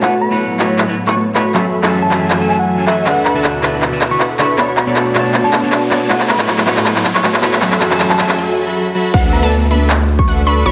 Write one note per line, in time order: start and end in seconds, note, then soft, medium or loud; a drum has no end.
0.00 1.53 A2 medium
0.00 1.53 F#3 medium
0.00 0.12 A3 medium
0.00 0.29 A3 medium
0.00 1.51 B3 medium
0.00 0.12 E4 medium
0.00 0.29 F#4 medium
0.00 0.13 F#4 medium
0.00 0.29 B4 medium
0.00 0.13 B4 medium
0.00 0.29 C#5 medium
0.00 0.13 C#5 medium
0.00 0.20 F#5 medium
0.00 0.29 A5 loud
0.00 clap medium
0.00 riser medium
0.21 0.38 B5 medium
0.31 0.57 A3 medium
0.31 0.42 A3 medium
0.31 0.57 E4 medium
0.31 0.42 F#4 medium
0.31 0.57 F#4 medium
0.31 0.42 B4 medium
0.31 0.58 B4 medium
0.31 0.42 C#5 medium
0.31 0.58 C#5 medium
0.31 0.42 B5 loud
0.58 0.86 A3 medium
0.58 0.77 A3 medium
0.58 0.86 E4 medium
0.58 0.77 F#4 medium
0.58 0.86 F#4 medium
0.58 0.77 B4 medium
0.58 0.86 B4 medium
0.58 0.77 C#5 medium
0.58 0.87 C#5 loud
0.58 0.77 C#6 medium
0.58 clap medium
0.78 clap medium
0.87 0.94 A3 medium
0.87 0.94 E4 medium
0.87 0.94 F#4 medium
0.87 0.94 B4 medium
0.87 0.95 C#5 medium
1.06 1.13 A3 medium
1.06 1.13 E4 medium
1.06 1.13 F#4 medium
1.06 1.13 B4 medium
1.06 1.14 C#5 medium
1.06 1.24 C#6 medium
1.06 clap medium
1.16 1.28 A3 medium
1.16 1.28 F#4 medium
1.16 1.28 B4 medium
1.16 1.28 C#5 medium
1.16 1.28 A5 medium
1.34 1.41 A3 medium
1.34 1.52 A3 loud
1.34 1.42 E4 medium
1.34 1.52 F#4 medium
1.34 1.42 F#4 medium
1.34 1.52 B4 medium
1.34 1.42 B4 medium
1.34 1.52 C#5 medium
1.34 1.42 C#5 loud
1.34 1.52 B5 medium
1.34 1.52 C#6 loud
1.34 clap medium
1.53 3.05 F#2 medium
1.53 3.05 E3 medium
1.53 1.64 F#3 medium
1.53 1.81 F#3 medium
1.53 3.05 A3 medium
1.53 1.64 C#4 medium
1.53 1.81 F#4 medium
1.53 1.65 G#4 medium
1.53 1.81 A4 medium
1.53 1.65 A4 medium
1.53 1.81 E5 medium
1.53 1.65 E5 medium
1.53 3.05 G#5 medium
1.53 1.81 B5 loud
1.53 clap medium
1.82 2.09 F#3 medium
1.82 2.09 C#4 medium
1.82 2.09 F#4 medium
1.82 2.09 G#4 medium
1.82 2.09 A4 medium
1.82 2.09 E5 medium
1.82 2.10 E5 medium
1.82 2.09 A5 medium
1.82 clap medium
2.02 2.18 A5 medium
2.10 2.38 F#3 medium
2.10 2.28 F#3 medium
2.10 2.38 C#4 medium
2.10 2.28 F#4 medium
2.10 2.38 G#4 medium
2.10 2.28 A4 medium
2.10 2.38 A4 medium
2.10 2.28 E5 medium
2.10 2.39 E5 loud
2.10 2.28 G#5 medium
2.10 clap medium
2.30 2.85 F#3 medium
2.30 2.85 F#4 medium
2.30 2.85 A4 medium
2.30 2.85 E5 medium
2.30 2.85 G#5 medium
2.30 clap medium
2.39 2.46 F#3 medium
2.39 2.46 C#4 medium
2.39 2.46 G#4 medium
2.39 2.46 A4 medium
2.39 2.47 E5 medium
2.48 2.55 F#3 medium
2.48 2.55 C#4 medium
2.48 2.56 G#4 medium
2.48 2.56 A4 medium
2.48 2.56 E5 loud
2.48 2.57 A5 medium
2.59 2.75 F#5 medium
2.77 2.84 F#3 medium
2.77 2.84 C#4 medium
2.77 2.84 G#4 medium
2.77 2.84 A4 medium
2.77 2.85 E5 medium
2.86 2.93 F#3 medium
2.86 3.04 F#3 medium
2.86 2.94 C#4 medium
2.86 3.04 F#4 medium
2.86 2.94 G#4 medium
2.86 3.04 A4 medium
2.86 2.94 A4 medium
2.86 3.10 E5 medium
2.86 3.04 E5 medium
2.86 2.94 F#5 medium
2.86 3.04 G#5 loud
2.86 clap medium
3.05 4.57 D2 medium
3.05 6.07 B2 medium
3.05 3.16 D3 medium
3.05 3.16 D4 medium
3.05 3.33 D4 medium
3.05 4.57 E4 medium
3.05 4.57 F#4 medium
3.05 3.17 F#4 medium
3.05 3.33 A4 medium
3.05 3.33 B4 medium
3.05 3.17 B4 medium
3.05 3.33 E5 medium
3.05 3.17 E5 medium
3.05 3.23 F#5 medium
3.05 3.33 F#5 loud
3.05 clap medium
3.05 closed hi-hat medium
3.25 3.42 B5 medium
3.25 clap medium
3.25 closed hi-hat medium
3.34 3.61 D3 medium
3.34 3.61 D4 medium
3.34 3.46 D4 medium
3.34 3.61 F#4 medium
3.34 3.46 A4 medium
3.34 3.46 B4 medium
3.34 3.61 B4 medium
3.34 3.46 E5 medium
3.34 3.62 E5 medium
3.34 3.46 A5 loud
3.44 clap medium
3.44 closed hi-hat medium
3.62 3.89 D3 medium
3.62 3.90 D4 medium
3.62 3.81 D4 medium
3.62 3.90 F#4 medium
3.62 3.81 A4 medium
3.62 3.81 B4 medium
3.62 3.90 B4 medium
3.62 3.81 E5 medium
3.62 3.90 E5 loud
3.62 3.81 B5 medium
3.62 clap medium
3.62 closed hi-hat medium
3.82 clap medium
3.82 closed hi-hat medium
3.91 3.98 D3 medium
3.91 3.98 D4 medium
3.91 3.98 F#4 medium
3.91 3.98 B4 medium
3.91 3.99 E5 medium
4.01 clap medium
4.01 closed hi-hat medium
4.10 4.16 D3 medium
4.10 4.17 D4 medium
4.10 4.17 F#4 medium
4.10 4.17 B4 medium
4.10 4.17 E5 medium
4.10 4.27 C#6 medium
4.20 4.32 D4 medium
4.20 4.32 A4 medium
4.20 4.32 B4 medium
4.20 4.32 E5 medium
4.20 4.32 F#5 medium
4.20 clap medium
4.20 closed hi-hat medium
4.38 4.45 D3 medium
4.38 4.45 D4 medium
4.38 4.56 D4 loud
4.38 4.46 F#4 medium
4.38 4.56 A4 medium
4.38 4.56 B4 medium
4.38 4.46 B4 medium
4.38 4.56 E5 medium
4.38 4.46 E5 loud
4.38 4.56 B5 loud
4.38 4.56 C#6 medium
4.38 clap medium
4.38 closed hi-hat medium
4.57 4.68 B2 medium
4.57 6.09 A3 medium
4.57 4.68 B3 medium
4.57 7.59 B3 medium
4.57 4.85 B3 medium
4.57 6.09 D4 medium
4.57 4.68 D4 medium
4.57 4.85 F#4 medium
4.57 4.69 A4 medium
4.57 4.85 C#5 medium
4.57 4.69 C#5 medium
4.57 4.85 D5 medium
4.57 4.65 B5 medium
4.57 4.85 C#6 medium
4.57 clap medium
4.57 closed hi-hat medium
4.68 4.74 B5 medium
4.77 5.06 B5 medium
4.77 clap medium
4.77 closed hi-hat medium
4.86 5.12 B2 medium
4.86 5.13 B3 medium
4.86 5.13 D4 medium
4.86 5.13 F#4 medium
4.86 5.13 A4 medium
4.86 5.13 C#5 medium
4.86 5.13 C#5 loud
4.86 5.13 D5 medium
4.86 5.13 B5 medium
4.96 clap medium
4.96 closed hi-hat medium
5.14 5.41 B2 medium
5.14 5.42 B3 medium
5.14 5.32 B3 medium
5.14 5.42 D4 medium
5.14 5.32 F#4 medium
5.14 5.42 A4 medium
5.14 5.32 C#5 medium
5.14 5.42 C#5 loud
5.14 5.32 D5 medium
5.14 5.32 A5 medium
5.14 clap medium
5.14 closed hi-hat medium
5.34 5.89 B3 medium
5.34 5.89 F#4 medium
5.34 5.89 C#5 medium
5.34 5.89 D5 medium
5.34 5.89 A5 medium
5.34 clap medium
5.34 closed hi-hat medium
5.43 5.49 B2 medium
5.43 5.50 B3 medium
5.43 5.50 D4 medium
5.43 5.50 A4 medium
5.43 5.50 C#5 medium
5.43 5.82 A5 medium
5.53 clap medium
5.53 closed hi-hat medium
5.62 5.68 B2 medium
5.62 5.69 B3 medium
5.62 5.69 D4 medium
5.62 5.69 A4 medium
5.62 5.69 C#5 medium
5.72 clap medium
5.72 closed hi-hat medium
5.90 5.97 B2 medium
5.90 5.97 B3 medium
5.90 6.08 B3 medium
5.90 5.98 D4 medium
5.90 6.08 F#4 medium
5.90 5.98 A4 medium
5.90 6.08 C#5 medium
5.90 5.98 C#5 loud
5.90 6.08 D5 medium
5.90 6.08 A5 loud
5.90 clap medium
5.90 closed hi-hat medium
6.09 7.60 A2 medium
6.09 7.60 F#3 medium
6.09 6.20 A3 medium
6.09 6.37 A3 loud
6.09 6.20 E4 medium
6.09 6.37 F#4 medium
6.09 6.20 F#4 medium
6.09 6.37 B4 medium
6.09 6.21 B4 medium
6.09 6.37 C#5 medium
6.09 6.21 C#5 medium
6.09 6.27 F#5 medium
6.09 6.37 A5 loud
6.09 clap medium
6.09 closed hi-hat medium
6.20 clap medium
6.29 6.45 B5 loud
6.29 clap medium
6.29 closed hi-hat medium
6.38 6.64 A3 medium
6.38 6.49 A3 medium
6.38 6.65 E4 medium
6.38 6.49 F#4 medium
6.38 6.65 F#4 medium
6.38 6.49 B4 medium
6.38 6.65 B4 medium
6.38 6.49 C#5 medium
6.38 6.65 C#5 loud
6.38 6.49 B5 loud
6.38 clap medium
6.48 clap medium
6.48 closed hi-hat medium
6.58 clap medium
6.66 6.93 A3 medium
6.66 6.84 A3 medium
6.66 6.93 E4 medium
6.66 6.84 F#4 medium
6.66 6.94 F#4 medium
6.66 6.84 B4 medium
6.66 6.94 B4 medium
6.66 6.84 C#5 medium
6.66 6.94 C#5 loud
6.66 6.84 C#6 medium
6.66 clap medium
6.66 closed hi-hat medium
6.77 clap medium
6.86 clap loud
6.86 closed hi-hat medium
6.95 7.01 A3 medium
6.95 7.02 E4 medium
6.95 7.02 F#4 medium
6.95 7.02 B4 medium
6.95 7.02 C#5 medium
6.95 clap medium
7.05 clap medium
7.05 closed hi-hat medium
7.14 7.20 A3 medium
7.14 7.21 E4 medium
7.14 7.21 F#4 medium
7.14 7.21 B4 medium
7.14 7.21 C#5 medium
7.14 7.31 C#6 medium
7.14 clap medium
7.24 7.35 A3 medium
7.24 7.35 F#4 medium
7.24 7.35 B4 medium
7.24 7.35 C#5 medium
7.24 7.35 A5 medium
7.24 clap loud
7.24 closed hi-hat medium
7.34 clap medium
7.42 7.49 A3 medium
7.42 7.60 A3 loud
7.42 7.49 E4 medium
7.42 7.60 F#4 medium
7.42 7.49 F#4 medium
7.42 7.60 B4 medium
7.42 7.50 B4 medium
7.42 7.60 C#5 medium
7.42 7.50 C#5 loud
7.42 7.59 B5 loud
7.42 7.60 C#6 loud
7.42 clap loud
7.42 closed hi-hat medium
7.53 clap medium
7.61 8.37 F#2 medium
7.61 8.37 E3 medium
7.61 7.72 F#3 medium
7.61 7.89 F#3 medium
7.61 8.37 A3 medium
7.61 7.72 C#4 medium
7.61 7.89 F#4 medium
7.61 7.72 G#4 medium
7.61 8.37 G#4 medium
7.61 7.89 A4 medium
7.61 7.72 A4 medium
7.61 7.89 E5 medium
7.61 7.73 E5 medium
7.61 7.89 B5 loud
7.61 clap loud
7.61 closed hi-hat medium
7.72 clap medium
7.81 clap loud
7.81 closed hi-hat medium
7.90 8.16 F#3 medium
7.90 8.17 F#3 medium
7.90 8.16 C#4 medium
7.90 8.17 F#4 medium
7.90 8.17 G#4 medium
7.90 8.17 A4 medium
7.90 8.17 E5 medium
7.90 8.17 E5 loud
7.90 8.17 A5 loud
7.90 clap medium
8.00 clap loud
8.00 closed hi-hat medium
8.10 8.26 A5 loud
8.10 clap medium
8.18 8.37 F#3 medium
8.18 8.36 F#3 medium
8.18 8.38 C#4 medium
8.18 8.36 F#4 medium
8.18 8.38 G#4 medium
8.18 8.36 A4 medium
8.18 8.38 A4 medium
8.18 8.36 E5 medium
8.18 8.38 E5 loud
8.18 8.36 G#5 medium
8.18 clap loud
8.18 closed hi-hat medium
8.29 clap medium
8.38 8.65 F#3 medium
8.38 8.65 F#4 medium
8.38 8.65 A4 medium
8.38 8.65 E5 medium
8.38 8.65 G#5 medium
8.67 8.84 F#3 medium
8.67 8.84 F#4 medium
8.67 8.84 A4 medium
8.67 8.84 E5 medium
8.67 8.84 B5 loud
8.95 9.12 F#3 loud
8.95 9.12 F#4 loud
8.95 9.12 A4 loud
8.95 9.12 E5 loud
8.95 9.12 B5 loud
9.14 10.64 D2 medium
9.14 9.41 D4 medium
9.14 9.41 E5 medium
9.14 9.41 F#5 loud
9.14 9.31 F#5 loud
9.14 kick loud
9.14 closed hi-hat medium
9.14 crash loud
9.14 downlifter medium
9.33 9.49 B5 medium
9.33 closed hi-hat medium
9.43 9.53 D4 loud
9.43 9.53 A4 medium
9.43 9.53 B4 medium
9.43 9.53 E5 medium
9.43 9.53 A5 loud
9.52 closed hi-hat medium
9.62 closed hi-hat medium
9.71 9.88 D4 medium
9.71 9.88 A4 medium
9.71 9.88 B4 medium
9.71 9.88 E5 medium
9.71 9.88 B5 medium
9.71 closed hi-hat medium
9.90 clap loud
9.90 closed hi-hat medium
10.09 closed hi-hat medium
10.19 10.35 C#6 medium
10.19 kick medium
10.28 10.39 D4 medium
10.28 10.39 A4 medium
10.28 10.39 B4 medium
10.28 10.39 E5 medium
10.28 10.39 F#5 medium
10.28 closed hi-hat medium
10.38 closed hi-hat medium
10.47 10.64 D4 loud
10.47 10.64 A4 medium
10.47 10.64 B4 medium
10.47 10.64 E5 medium
10.47 10.64 B5 loud
10.47 10.64 C#6 medium
10.47 open hi-hat medium
10.66 10.72 B1 medium
10.66 10.72 B3 medium
10.66 10.72 F#4 medium
10.66 10.72 C#5 medium
10.66 10.72 D5 medium
10.66 10.72 B5 medium
10.66 10.72 C#6 loud
10.66 closed hi-hat medium